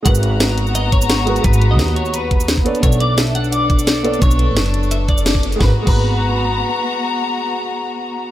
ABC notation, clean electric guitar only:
X:1
M:4/4
L:1/16
Q:1/4=173
K:G#m
V:1 name="Clean electric guitar"
f8 d2 c4 z2 | B3 d3 c2 B8 | c2 =d2 e2 f2 d8 | c8 e2 =d4 z2 |
B z2 B12- B- | B16 |]